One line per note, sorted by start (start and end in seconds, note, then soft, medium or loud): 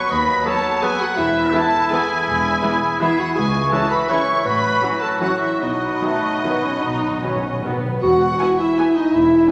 0.00 1.18 F#3 medium
0.00 0.12 C#5 medium
0.00 1.14 B5 medium
0.00 0.10 C#6 medium
0.10 0.40 D#2 medium
0.10 0.47 B4 medium
0.10 0.47 D#5 medium
0.10 0.46 B5 loud
0.45 0.54 F#3 medium
0.45 0.60 F#3 medium
0.45 0.54 B3 medium
0.45 0.60 B3 medium
0.45 0.84 A4 medium
0.45 0.85 C#5 medium
0.45 0.82 A5 medium
0.82 0.91 F#3 medium
0.82 0.96 F#3 medium
0.82 0.91 B3 medium
0.82 0.96 B3 medium
0.82 1.02 G#4 medium
0.82 1.55 B4 medium
0.82 1.01 G#5 loud
1.01 1.17 F#4 medium
1.01 1.18 F#5 medium
1.17 1.48 E1 medium
1.17 1.48 E2 medium
1.17 3.05 E3 medium
1.17 1.55 E4 medium
1.17 1.54 E5 medium
1.17 3.32 B5 medium
1.53 1.67 E3 medium
1.53 1.62 E3 medium
1.53 1.62 G#3 medium
1.53 1.67 B3 medium
1.53 1.62 B3 soft
1.53 3.02 E4 medium
1.53 1.62 E4 medium
1.53 1.92 A4 medium
1.53 1.92 A5 loud
1.90 2.04 E3 medium
1.90 2.00 E3 medium
1.90 2.00 G#3 medium
1.90 2.04 B3 medium
1.90 2.00 B3 medium
1.90 2.00 E4 medium
1.90 3.02 G#4 medium
1.90 3.00 G#5 medium
2.27 2.57 E1 medium
2.27 2.56 E2 medium
2.62 2.76 E3 medium
2.62 2.71 E3 medium
2.62 2.71 G#3 medium
2.62 2.76 B3 medium
2.62 2.71 B3 soft
2.62 2.71 E4 medium
3.00 3.13 E3 medium
3.00 3.09 E3 medium
3.00 3.09 G#3 medium
3.00 3.13 B3 medium
3.00 3.09 B3 medium
3.00 3.20 E4 medium
3.00 3.09 E4 medium
3.00 3.46 G#4 medium
3.00 3.18 E5 medium
3.18 3.35 F#4 medium
3.18 3.36 F#5 medium
3.35 3.65 C#2 medium
3.35 3.66 C#2 medium
3.35 4.47 E3 medium
3.35 3.73 G#4 medium
3.35 3.71 G#5 medium
3.35 5.56 C#6 medium
3.71 3.85 E3 medium
3.71 3.80 E3 medium
3.71 3.80 G#3 medium
3.71 3.85 C#4 medium
3.71 3.81 C#4 medium
3.71 3.81 E4 medium
3.71 4.12 F#4 medium
3.71 3.93 A4 medium
3.71 3.90 A5 medium
3.91 4.11 B4 medium
3.91 4.10 B5 medium
4.09 4.23 E3 medium
4.09 4.18 E3 medium
4.09 4.18 G#3 medium
4.09 4.22 C#4 medium
4.09 4.19 C#4 medium
4.09 4.47 E4 medium
4.09 4.19 E4 medium
4.09 4.44 C#5 medium
4.09 4.45 C#6 medium
4.45 4.75 A1 medium
4.45 4.75 A2 medium
4.45 5.60 F#3 medium
4.45 5.60 F#4 medium
4.45 5.03 B4 medium
4.45 4.99 B5 loud
4.82 4.90 E3 medium
4.82 4.90 F#3 medium
4.82 4.96 F#3 medium
4.82 4.96 C#4 medium
4.82 4.90 C#4 soft
4.82 4.91 F#4 soft
5.00 5.21 A4 medium
5.00 5.20 A5 medium
5.20 5.29 E3 soft
5.20 5.29 F#3 soft
5.20 5.35 F#3 soft
5.20 5.35 C#4 soft
5.20 5.29 C#4 soft
5.20 5.30 F#4 medium
5.20 5.30 F#4 soft
5.20 5.40 F#5 medium
5.40 5.62 E4 medium
5.40 5.60 E5 medium
5.60 5.94 B1 medium
5.60 5.94 B2 medium
5.60 5.67 B2 soft
5.60 7.80 F#3 soft
5.60 7.64 D#4 medium
5.60 7.80 F#4 medium
5.60 7.64 D#5 medium
5.60 7.84 B5 soft
5.69 5.76 B2 soft
5.86 5.93 B2 soft
5.94 6.02 B2 soft
6.02 6.11 B2 soft
6.02 6.10 D#3 soft
6.02 6.10 F#3 soft
6.02 6.17 F#3 soft
6.02 6.41 A3 medium
6.02 6.17 B3 soft
6.12 6.19 B2 soft
6.20 6.28 B2 soft
6.29 6.37 B2 soft
6.38 6.45 B2 soft
6.44 6.54 B2 soft
6.44 6.52 D#3 soft
6.44 6.52 F#3 soft
6.44 6.59 F#3 soft
6.44 6.64 B3 medium
6.44 6.59 B3 soft
6.55 6.62 B2 soft
6.63 6.70 B2 soft
6.63 6.83 C#4 medium
6.71 6.78 B2 soft
6.79 6.86 B2 soft
6.79 7.16 B2 medium
6.79 7.22 D#4 medium
6.83 7.16 B1 medium
6.83 6.94 B2 medium
6.95 7.01 B2 medium
7.03 7.09 B2 medium
7.11 7.18 B2 medium
7.19 7.27 B2 medium
7.19 7.38 F#3 soft
7.19 7.63 C#4 soft
7.23 7.31 D#3 soft
7.23 7.31 F#3 soft
7.23 7.38 B3 soft
7.28 7.35 B2 medium
7.36 7.43 B2 medium
7.44 7.51 B2 medium
7.53 7.60 B2 medium
7.61 7.68 B2 medium
7.61 7.72 D#3 soft
7.61 7.72 F#3 soft
7.61 8.02 B3 soft
7.61 7.79 B3 soft
7.65 7.76 B2 medium
7.65 7.79 F#3 soft
7.77 7.84 B2 medium
7.85 7.92 B2 medium
7.93 8.00 B2 medium
8.02 8.33 E1 medium
8.02 8.33 E2 medium
8.02 8.55 E2 medium
8.02 8.61 F#4 medium
8.02 8.55 F#4 medium
8.02 8.55 F#5 medium
8.39 8.48 B3 medium
8.39 8.48 E4 medium
8.39 8.48 G#5 medium
8.59 8.97 E4 medium
8.59 8.95 E4 medium
8.59 8.96 E5 medium
8.78 8.86 B3 medium
8.78 8.86 E4 medium
8.78 8.86 G#5 medium
8.95 9.13 D#4 medium
8.95 9.15 D#4 medium
8.95 9.13 D#5 medium
9.13 9.43 E1 medium
9.13 9.43 E2 medium
9.13 9.48 E4 medium
9.13 9.50 E4 medium
9.13 9.49 E5 medium
9.48 9.51 C#4 medium